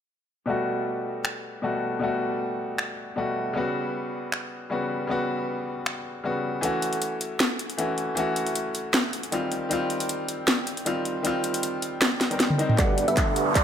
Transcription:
0.46 B2 G3 A3 F#4
1.25 finger snap
1.62 B2 G3 A3 F#4
1.99 B2 G3 A3
2.03 F#4
2.78 finger snap
3.16 B2 G3 A3 F#4
3.53 C#3 G3 B3
3.57 F#4
4.32 finger snap
4.70 C#3 G3 B3 F#4
5.07 C#3 G3 B3
5.11 F#4
5.86 finger snap
6.24 C#3 G3 B3 F#4
6.61 E3 A3 C#4 F#4, closed hi-hat
6.82 closed hi-hat
6.93 closed hi-hat
7.02 closed hi-hat
7.21 closed hi-hat
7.40 finger snap, snare, closed hi-hat
7.59 closed hi-hat
7.70 closed hi-hat
7.78 E3 A3 C#4 F#4, closed hi-hat
7.98 closed hi-hat
8.15 E3 A3 C#4, closed hi-hat
8.19 F#4
8.36 closed hi-hat
8.47 closed hi-hat
8.55 closed hi-hat
8.75 closed hi-hat
8.94 finger snap, snare, closed hi-hat
9.13 closed hi-hat
9.23 closed hi-hat
9.31 D#3 G3 C4 F4, closed hi-hat
9.52 closed hi-hat
9.69 D#3 G3 C4 F4, closed hi-hat
9.90 closed hi-hat
10.00 closed hi-hat
10.09 closed hi-hat
10.28 closed hi-hat
10.48 finger snap, snare, closed hi-hat
10.67 closed hi-hat
10.77 closed hi-hat
10.85 D#3 G3 C4 F4, closed hi-hat
11.05 closed hi-hat
11.23 D#3 G3 C4 F4, closed hi-hat
11.44 closed hi-hat
11.54 closed hi-hat
11.63 closed hi-hat
11.82 closed hi-hat
12.02 finger snap, snare, closed hi-hat
12.21 snare, closed hi-hat
12.30 D#3 G3 C4 A#4, closed hi-hat
12.40 snare, closed hi-hat
12.50 mid tom
12.58 D#3 G3 C4 D#4, closed hi-hat
12.70 mid tom
12.76 G1 B2 G3 A3 D4 G4 A4 B4 D5 F#5, kick, clap, closed hi-hat, riser
12.98 closed hi-hat
13.08 G1 D4 G4 A4 B4 E5 F#5, closed hi-hat
13.17 kick, clap, closed hi-hat
13.36 closed hi-hat
13.55 D5, kick, clap, closed hi-hat

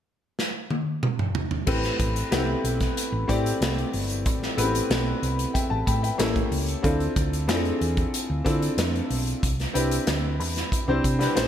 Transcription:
0.39 snare
0.70 high tom
1.03 mid tom
1.19 mid tom
1.35 floor tom
1.51 floor tom
1.67 A1 A3 C4 E4 G4 B4, kick, crash
1.84 snare, closed hi-hat
1.99 A1, kick, closed hi-hat
2.16 closed hi-hat
2.31 C2 A3 B3 E4 G4 B4, snare, closed hi-hat
2.38 C4
2.64 B1, closed hi-hat
2.80 kick, snare, closed hi-hat
2.97 closed hi-hat
3.12 A1
3.28 A2 A3 C4 E4 G4 D5, kick, closed hi-hat
3.46 closed hi-hat
3.61 C2, snare, closed hi-hat
3.78 closed hi-hat
3.93 G1, open hi-hat
4.10 closed hi-hat
4.26 A1, kick, closed hi-hat
4.43 snare
4.56 A1 A3 B3 E4 G4 B4, closed hi-hat
4.63 C4
4.75 closed hi-hat
4.90 B1, snare, closed hi-hat
5.22 C2, closed hi-hat
5.39 closed hi-hat
5.53 E5 G5, kick, closed hi-hat
5.70 A1 A5
5.86 A2 G5 B5, kick, closed hi-hat
6.02 E5 G5, closed hi-hat
6.18 A1 A#3 C#4 E4 G4 A4, snare, closed hi-hat
6.36 kick, closed hi-hat
6.51 C#2, open hi-hat
6.68 closed hi-hat
6.82 D2 C4 D4 E4 F4 A4, kick, closed hi-hat
7.00 closed hi-hat
7.16 D2, kick, closed hi-hat
7.33 closed hi-hat
7.48 F2 C4 D4 E4 F4 G#4, snare, closed hi-hat
7.55 A4
7.65 closed hi-hat
7.81 E2, closed hi-hat
7.97 kick, closed hi-hat
8.14 closed hi-hat
8.30 D2
8.44 D3 C4 D4 E4 F4 A4, kick, closed hi-hat
8.62 closed hi-hat
8.77 F2, snare, closed hi-hat
8.95 closed hi-hat
9.10 B1, open hi-hat
9.27 closed hi-hat
9.43 C2, kick, closed hi-hat
9.60 snare, closed hi-hat
9.73 C2 C4 D4 E4 G4 B4, closed hi-hat
9.91 closed hi-hat
10.07 D2, snare, closed hi-hat
10.40 E2, open hi-hat
10.56 snare, closed hi-hat
10.72 kick, closed hi-hat
10.88 C2 C4 D4 E4 G4 C5
11.04 C3, kick, closed hi-hat
11.19 C4 D4 E4 G4 B4, snare, closed hi-hat
11.35 A#1 A#3 C#4 F4 G#4 C5, snare, closed hi-hat

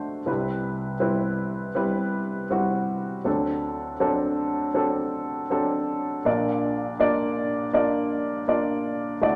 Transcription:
Already playing: D2 D3 A3 D4 F#4 C5
0.26 C2 C3 G3 C4 E4 B4
1.00 G3 C4 E4 B4
1.75 G3 C4 E4 B4
2.50 G3 C4 E4 F#4
3.24 D2 D3 F#3 C4 D4 A4
4.00 F#3 C4 D4 A4
4.74 F#3 C4 D4 A4
5.50 F#3 C4 D4 A4
6.25 A#1 A#2 A#3 D4 F4 D5
6.99 A#3 D4 F4 D5
7.73 A#3 D4 F4 D5
8.48 A#3 D4 F4 D5
9.21 D2 D3 A3 E4 F#4 D5

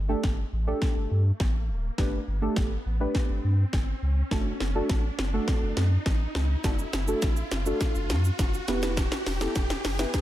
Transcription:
Already playing: G1, riser
0.08 A3 D4 G4 A4
0.23 G1, kick, snare
0.52 A1
0.67 A3 D4 G4 A4
0.82 kick, snare
0.96 G1
1.11 G2
1.40 A1, kick, snare
1.69 D1
1.98 G1 A3 D4 G4 B4, kick, snare
2.27 G1
2.42 A3 D4 G4 A4
2.56 G1, kick, snare
2.86 A1
3.00 A3 D4 G4 B4
3.15 kick, snare
3.29 G1
3.44 G2
3.73 G1, kick, snare
4.02 C#2
4.31 F#1 A3 D4 F#4 A4, kick, snare
4.60 F#1, snare
4.75 A3 D4 F#4 A4
4.89 A1, kick, snare
5.19 F#1, snare
5.33 A3 D4 F#4 A4
5.48 kick, snare
5.62 F#1
5.77 F#2, snare
6.06 A1, kick, snare
6.35 C#2, snare
6.64 F#1 A3 D4 F#4 A4, kick, snare, closed hi-hat, shaker
6.79 shaker
6.93 F#1, snare, closed hi-hat, shaker
7.08 A3 D4 F#4 A4, shaker
7.22 A1, kick, snare, closed hi-hat, shaker
7.37 shaker
7.51 F#1, snare, closed hi-hat, shaker
7.66 A3 D4 F#4 A4, shaker
7.81 kick, snare, closed hi-hat, shaker
7.95 F#1, shaker
8.10 F#2, snare, closed hi-hat, shaker
8.25 shaker
8.39 F#1, kick, snare, closed hi-hat, shaker
8.54 shaker
8.68 E1 B3 E4 G4 B4, snare, closed hi-hat, shaker
8.82 snare, shaker
8.97 kick, snare, closed hi-hat, shaker
9.12 snare, shaker
9.26 E1, snare, open hi-hat, shaker
9.41 B3 E4 G4 A4, snare, shaker
9.55 E1, kick, snare, closed hi-hat, shaker
9.70 snare, shaker
9.85 F#1, snare, open hi-hat, shaker
9.99 B3 E4 G4 B4, snare, shaker
10.14 kick, snare, closed hi-hat, shaker

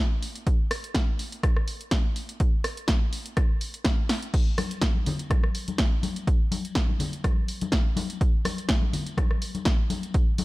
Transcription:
0.22 open hi-hat
0.36 closed hi-hat
0.47 kick, closed hi-hat
0.71 cross-stick, open hi-hat
0.84 closed hi-hat
0.95 kick, snare, closed hi-hat
1.19 open hi-hat
1.32 closed hi-hat
1.43 kick, cross-stick, closed hi-hat
1.56 cross-stick
1.68 open hi-hat
1.81 closed hi-hat
1.91 kick, snare, closed hi-hat
2.16 open hi-hat
2.29 closed hi-hat
2.40 kick, closed hi-hat
2.64 cross-stick, open hi-hat
2.77 closed hi-hat
2.88 kick, snare, closed hi-hat
3.13 open hi-hat
3.26 closed hi-hat
3.37 kick, cross-stick, closed hi-hat
3.61 open hi-hat
3.74 closed hi-hat
3.85 kick, snare, closed hi-hat
4.09 snare, open hi-hat
4.22 closed hi-hat
4.34 kick, closed hi-hat, crash, tambourine
4.58 cross-stick, open hi-hat, tambourine, high conga
4.70 closed hi-hat, tambourine
4.82 kick, snare, closed hi-hat, tambourine
4.95 high conga
5.06 open hi-hat, tambourine, low conga
5.19 closed hi-hat, tambourine
5.30 kick, cross-stick, closed hi-hat, tambourine, high conga
5.44 cross-stick
5.55 open hi-hat, tambourine
5.68 closed hi-hat, tambourine, high conga
5.78 kick, snare, closed hi-hat, tambourine
6.03 open hi-hat, tambourine, high conga
6.16 closed hi-hat, tambourine
6.27 kick, closed hi-hat
6.52 open hi-hat, tambourine, high conga
6.65 closed hi-hat, tambourine
6.75 kick, snare, closed hi-hat
6.89 high conga
6.99 open hi-hat, tambourine, low conga
7.12 closed hi-hat, tambourine
7.24 kick, cross-stick, closed hi-hat, tambourine, high conga
7.48 open hi-hat, tambourine
7.61 closed hi-hat, tambourine, high conga
7.72 kick, snare, closed hi-hat
7.96 open hi-hat, tambourine, high conga
8.10 closed hi-hat, tambourine
8.21 kick, closed hi-hat
8.45 cross-stick, open hi-hat, tambourine, high conga
8.58 closed hi-hat, tambourine
8.69 kick, snare, closed hi-hat
8.82 high conga
8.93 open hi-hat, tambourine, low conga
9.06 closed hi-hat, tambourine
9.17 kick, cross-stick, closed hi-hat, tambourine, high conga
9.31 cross-stick
9.42 open hi-hat, tambourine
9.55 closed hi-hat, tambourine, high conga
9.65 kick, snare, closed hi-hat, tambourine
9.90 open hi-hat, tambourine, high conga
10.03 closed hi-hat, tambourine
10.14 kick, closed hi-hat, tambourine
10.38 open hi-hat, tambourine, high conga

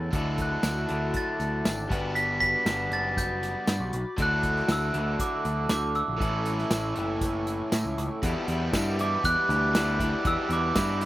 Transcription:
Already playing: E2 A2 E3 A3 C#4 E4 A4
0.11 D2 D3 F#3 A3 D4 F#4 A4 E5 A5 D6, kick, closed hi-hat
0.15 D4 E4
0.38 kick, closed hi-hat
0.42 F#6
0.63 D2, snare, closed hi-hat, tambourine
0.87 D2 D3 F#3 A3 D4 E4, closed hi-hat
1.14 A6, kick, closed hi-hat
1.40 D2, closed hi-hat
1.65 G#1, snare, closed hi-hat, tambourine
1.88 G1 G3 B3 D4 F#4 B5, kick, closed hi-hat
1.92 B4
2.15 B6, closed hi-hat
2.40 B6, kick, closed hi-hat
2.65 G1 G3 B3 D4 F#4, snare, closed hi-hat, tambourine
2.90 F#1 A6, closed hi-hat
3.17 G6, kick, closed hi-hat
3.43 snare, closed hi-hat
3.67 G2, snare, closed hi-hat, tambourine
3.80 B1
3.93 B1, closed hi-hat
4.17 D2 D3 F#3 A3 D4 E4 F#4 A4 E6, kick, closed hi-hat
4.22 F#6
4.43 kick, closed hi-hat
4.56 snare
4.68 D2 E6, snare, closed hi-hat, tambourine
4.92 D2 D3 F#3 A3 D4 E4, closed hi-hat
5.19 D6, kick, closed hi-hat
5.45 D2, closed hi-hat
5.69 D2 D6, snare, closed hi-hat, tambourine
5.95 E6, closed hi-hat
6.08 A#1
6.17 A2 E3 A3 C#4 E4 E5 C#6, kick
6.21 A1 E4 A4, closed hi-hat
6.45 closed hi-hat
6.58 snare
6.71 A1, snare, closed hi-hat, tambourine
6.94 F#1 A2 E3 A3 C#4 E4, closed hi-hat
7.21 kick, closed hi-hat
7.47 closed hi-hat
7.72 A2, snare, closed hi-hat, tambourine
7.85 C#2
7.98 C#2, closed hi-hat
8.21 E2 B2 E3 G3 B3 D4 G4 E5 B5 D6, kick, closed hi-hat
8.25 E4
8.47 E2 E3 G3 B3 D4 E4 G4, closed hi-hat
8.71 E2 G2 B2 E3 G3 B3 G4, kick, snare, closed hi-hat, tambourine
8.75 D4 E4
8.98 E2 B2 E3 G3 B3 D4 E4 G4 D6, closed hi-hat
9.23 E2 E3 G3 B3 G4 F#6, kick, closed hi-hat
9.49 D2 E2 B2 E3 G3 B3 G4, closed hi-hat
9.73 E3 G3 D4 E4, snare, closed hi-hat, tambourine
9.77 B3 G4
9.99 E3 G3 B3 D4 E4 G4, kick, closed hi-hat
10.23 E2 B2 E3 G3 B3 D4 E4 G4 E6, kick, closed hi-hat
10.49 E2 E3 G3 B3 D4 E4 G4, closed hi-hat
10.53 D6
10.74 E2 G2 B2 E3 G3 B3 D4 G4, kick, snare, closed hi-hat, tambourine
10.78 E4
11.00 G3 B3 D4 E4 G4, closed hi-hat

